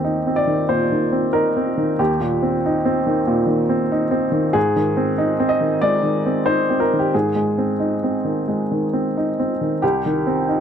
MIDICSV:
0, 0, Header, 1, 2, 480
1, 0, Start_track
1, 0, Key_signature, -3, "major"
1, 0, Tempo, 641026
1, 1494, Time_signature, 4, 2, 24, 8
1, 4843, Tempo, 666667
1, 7820, End_track
2, 0, Start_track
2, 0, Title_t, "Upright piano"
2, 0, Program_c, 0, 0
2, 0, Control_c, 0, 64, 127
2, 0, Note_on_c, 0, 39, 38
2, 0, Note_on_c, 0, 51, 30
2, 0, Note_on_c, 0, 60, 32
2, 0, Note_on_c, 0, 67, 45
2, 32, Note_on_c, 0, 63, 37
2, 133, Note_off_c, 0, 60, 0
2, 202, Note_on_c, 0, 60, 35
2, 271, Note_on_c, 0, 74, 54
2, 275, Note_off_c, 0, 67, 0
2, 298, Note_off_c, 0, 63, 0
2, 354, Note_off_c, 0, 51, 0
2, 354, Note_on_c, 0, 51, 34
2, 464, Note_off_c, 0, 60, 0
2, 490, Note_off_c, 0, 39, 0
2, 516, Note_on_c, 0, 46, 33
2, 516, Note_on_c, 0, 72, 51
2, 523, Note_off_c, 0, 74, 0
2, 621, Note_off_c, 0, 51, 0
2, 689, Note_on_c, 0, 51, 33
2, 782, Note_off_c, 0, 46, 0
2, 842, Note_on_c, 0, 60, 36
2, 948, Note_off_c, 0, 51, 0
2, 995, Note_on_c, 0, 70, 59
2, 1001, Note_on_c, 0, 63, 40
2, 1007, Note_off_c, 0, 72, 0
2, 1104, Note_off_c, 0, 60, 0
2, 1172, Note_on_c, 0, 60, 38
2, 1263, Note_off_c, 0, 63, 0
2, 1329, Note_on_c, 0, 51, 36
2, 1429, Note_off_c, 0, 60, 0
2, 1484, Note_off_c, 0, 70, 0
2, 1491, Note_on_c, 0, 67, 55
2, 1492, Note_on_c, 0, 39, 48
2, 1504, Control_c, 0, 64, 0
2, 1587, Note_off_c, 0, 51, 0
2, 1632, Control_c, 0, 64, 127
2, 1648, Note_on_c, 0, 46, 37
2, 1815, Note_on_c, 0, 60, 36
2, 1907, Note_off_c, 0, 46, 0
2, 1990, Note_on_c, 0, 63, 44
2, 2071, Note_off_c, 0, 60, 0
2, 2137, Note_on_c, 0, 60, 45
2, 2238, Note_off_c, 0, 63, 0
2, 2296, Note_on_c, 0, 51, 39
2, 2392, Note_off_c, 0, 60, 0
2, 2425, Note_off_c, 0, 39, 0
2, 2448, Note_on_c, 0, 46, 44
2, 2552, Note_off_c, 0, 51, 0
2, 2595, Note_on_c, 0, 51, 44
2, 2709, Note_off_c, 0, 46, 0
2, 2766, Note_on_c, 0, 60, 47
2, 2862, Note_off_c, 0, 51, 0
2, 2934, Note_on_c, 0, 63, 49
2, 3027, Note_off_c, 0, 60, 0
2, 3079, Note_on_c, 0, 60, 47
2, 3174, Note_off_c, 0, 67, 0
2, 3190, Note_off_c, 0, 63, 0
2, 3233, Note_on_c, 0, 51, 40
2, 3341, Note_off_c, 0, 60, 0
2, 3394, Note_on_c, 0, 68, 73
2, 3402, Note_off_c, 0, 51, 0
2, 3402, Note_on_c, 0, 44, 54
2, 3426, Control_c, 0, 64, 0
2, 3552, Control_c, 0, 64, 127
2, 3567, Note_on_c, 0, 51, 44
2, 3721, Note_on_c, 0, 60, 43
2, 3820, Note_off_c, 0, 51, 0
2, 3880, Note_on_c, 0, 63, 51
2, 3977, Note_off_c, 0, 60, 0
2, 4042, Note_on_c, 0, 60, 48
2, 4110, Note_on_c, 0, 75, 63
2, 4112, Note_off_c, 0, 68, 0
2, 4135, Note_off_c, 0, 63, 0
2, 4199, Note_on_c, 0, 51, 38
2, 4295, Note_off_c, 0, 60, 0
2, 4325, Note_off_c, 0, 44, 0
2, 4353, Note_off_c, 0, 75, 0
2, 4354, Note_on_c, 0, 74, 70
2, 4358, Note_on_c, 0, 56, 39
2, 4454, Note_off_c, 0, 51, 0
2, 4518, Note_on_c, 0, 51, 40
2, 4616, Note_off_c, 0, 56, 0
2, 4687, Note_on_c, 0, 60, 38
2, 4779, Note_off_c, 0, 51, 0
2, 4835, Note_on_c, 0, 72, 65
2, 4836, Note_on_c, 0, 63, 40
2, 4843, Note_off_c, 0, 74, 0
2, 4943, Note_off_c, 0, 60, 0
2, 5009, Note_on_c, 0, 60, 38
2, 5078, Note_off_c, 0, 72, 0
2, 5081, Note_on_c, 0, 70, 56
2, 5095, Note_off_c, 0, 63, 0
2, 5180, Note_on_c, 0, 51, 30
2, 5202, Note_off_c, 0, 70, 0
2, 5221, Note_on_c, 0, 67, 47
2, 5261, Note_off_c, 0, 60, 0
2, 5329, Note_on_c, 0, 68, 51
2, 5331, Note_off_c, 0, 67, 0
2, 5331, Note_on_c, 0, 44, 42
2, 5337, Control_c, 0, 64, 0
2, 5426, Note_off_c, 0, 51, 0
2, 5444, Control_c, 0, 64, 127
2, 5479, Note_on_c, 0, 56, 32
2, 5645, Note_on_c, 0, 60, 33
2, 5737, Note_off_c, 0, 56, 0
2, 5800, Note_on_c, 0, 63, 35
2, 5901, Note_off_c, 0, 60, 0
2, 5973, Note_on_c, 0, 60, 33
2, 6061, Note_off_c, 0, 63, 0
2, 6124, Note_on_c, 0, 51, 32
2, 6229, Note_off_c, 0, 60, 0
2, 6266, Note_off_c, 0, 44, 0
2, 6293, Note_on_c, 0, 56, 30
2, 6386, Note_off_c, 0, 51, 0
2, 6461, Note_on_c, 0, 51, 33
2, 6550, Note_off_c, 0, 56, 0
2, 6619, Note_on_c, 0, 60, 34
2, 6714, Note_off_c, 0, 51, 0
2, 6791, Note_on_c, 0, 63, 35
2, 6874, Note_off_c, 0, 60, 0
2, 6950, Note_on_c, 0, 60, 36
2, 7020, Note_off_c, 0, 68, 0
2, 7041, Note_off_c, 0, 63, 0
2, 7107, Note_on_c, 0, 51, 29
2, 7200, Note_off_c, 0, 60, 0
2, 7259, Note_on_c, 0, 67, 57
2, 7261, Note_off_c, 0, 51, 0
2, 7265, Note_on_c, 0, 36, 45
2, 7270, Control_c, 0, 64, 0
2, 7386, Control_c, 0, 64, 127
2, 7429, Note_on_c, 0, 51, 36
2, 7579, Note_on_c, 0, 60, 38
2, 7671, Note_off_c, 0, 51, 0
2, 7738, Note_on_c, 0, 63, 40
2, 7820, Note_off_c, 0, 36, 0
2, 7820, Note_off_c, 0, 60, 0
2, 7820, Note_off_c, 0, 63, 0
2, 7820, Note_off_c, 0, 67, 0
2, 7820, End_track
0, 0, End_of_file